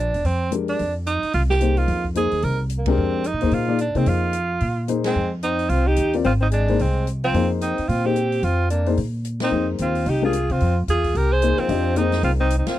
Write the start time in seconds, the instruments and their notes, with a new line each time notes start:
Already playing: upright bass A#1
0.00 tenor saxophone D4
0.14 upright bass E1, open hi-hat
0.24 upright bass F2, tenor saxophone C4, open hi-hat
0.51 grand piano G#3 D4 G4 A#4, closed hi-hat
0.68 tenor saxophone D4, open hi-hat
0.79 upright bass F2, open hi-hat
1.06 tenor saxophone D#4, closed hi-hat
1.23 muted upright bass stroke, open hi-hat
1.33 upright bass C2, tenor saxophone F4, open hi-hat
1.50 tenor saxophone G4, snare
1.60 grand piano A#3 D#4 G#4 C5, closed hi-hat
1.77 tenor saxophone F4, open hi-hat
1.88 upright bass F2, open hi-hat
2.04 kick
2.15 grand piano A#3 D#4 G#4 C5, tenor saxophone G#4, closed hi-hat
2.31 upright bass D#2, open hi-hat
2.42 upright bass C2, tenor saxophone A#4, open hi-hat
2.70 closed hi-hat
2.79 tenor saxophone A#3
2.86 grand piano G#3 D4 G4 A#4, tenor saxophone C4, kick, ride
2.97 upright bass F2
3.24 tenor saxophone D#4, closed hi-hat
3.33 upright bass A#2
3.41 upright bass D#2, grand piano A#3 D#4 G#4 C5, open hi-hat
3.51 upright bass A#2, tenor saxophone F4, open hi-hat
3.68 grand piano A#3 D#4 G#4 D5
3.79 tenor saxophone D4, closed hi-hat
3.95 upright bass C3, grand piano A#3 D#4 G#4 C5, tenor saxophone C4, open hi-hat
4.06 upright bass F2, tenor saxophone F4, open hi-hat
4.33 closed hi-hat
4.61 upright bass A#2, open hi-hat
4.88 grand piano A#3 D#4 G#4 C5, closed hi-hat
5.04 alto saxophone G#3, tenor saxophone C4, snare, ride
5.15 upright bass F2
5.43 alto saxophone C4, tenor saxophone D#4, closed hi-hat
5.59 open hi-hat
5.69 upright bass C2, alto saxophone C4, tenor saxophone F4, open hi-hat
5.87 alto saxophone D#4, tenor saxophone G4
5.96 upright bass D#2, closed hi-hat
6.13 grand piano C4 F4 A#4 D5, open hi-hat
6.24 upright bass G#1, alto saxophone C4, tenor saxophone F4, open hi-hat
6.41 alto saxophone C4, tenor saxophone D#4
6.51 alto saxophone G#3, tenor saxophone D4, closed hi-hat
6.68 grand piano A#3 D#4 G#4 C5, open hi-hat
6.79 upright bass C2, alto saxophone G#3, tenor saxophone C4, open hi-hat
7.07 closed hi-hat
7.24 alto saxophone F3, tenor saxophone C4, open hi-hat
7.34 upright bass F2, grand piano A#3 D#4 G#4 C5, open hi-hat
7.61 alto saxophone C4, tenor saxophone D#4, closed hi-hat
7.78 muted upright bass stroke, open hi-hat
7.88 upright bass A#2, alto saxophone C4, tenor saxophone F4, open hi-hat
8.05 grand piano A#3 D#4 G#4 C5, alto saxophone C4, tenor saxophone G4
8.16 closed hi-hat
8.32 open hi-hat
8.43 upright bass F2, alto saxophone C4, tenor saxophone F4, open hi-hat
8.70 alto saxophone A#3, tenor saxophone D4, closed hi-hat
8.86 grand piano A#3 D#4 G#4 C5, open hi-hat
8.97 upright bass A#2, open hi-hat
9.25 closed hi-hat
9.40 alto saxophone C4, tenor saxophone D#4, snare, ride
9.51 upright bass F2, grand piano A#3 D#4 G#4 C5
9.78 upright bass D#2, alto saxophone C4, tenor saxophone F4, closed hi-hat
9.95 open hi-hat
10.06 upright bass C2, alto saxophone D#4, tenor saxophone G4, open hi-hat
10.22 grand piano G#3 D4 G4 A#4, alto saxophone F4, tenor saxophone G#4
10.33 closed hi-hat
10.50 upright bass C3, alto saxophone C4, tenor saxophone F4, open hi-hat
10.60 upright bass F2, open hi-hat
10.88 upright bass E2, alto saxophone F4, tenor saxophone G#4, closed hi-hat
11.04 kick, open hi-hat
11.14 upright bass C2, alto saxophone G4, tenor saxophone A#4, open hi-hat
11.32 alto saxophone G#4, tenor saxophone C5
11.42 grand piano A#3 D#4 G#4 C5, closed hi-hat
11.58 alto saxophone F3, tenor saxophone C4, muted upright bass stroke, open hi-hat
11.69 upright bass F2, grand piano D4 G4 C5 D#5, open hi-hat
11.96 grand piano A#3 D#4 G#4 C5, alto saxophone C4, tenor saxophone D#4, closed hi-hat
12.12 snare, open hi-hat
12.23 upright bass C2, alto saxophone C4, tenor saxophone F4, open hi-hat
12.40 alto saxophone C4, tenor saxophone D#4
12.50 closed hi-hat
12.58 alto saxophone C4, tenor saxophone D#4
12.66 alto saxophone C4, tenor saxophone F4, muted upright bass stroke, snare, ride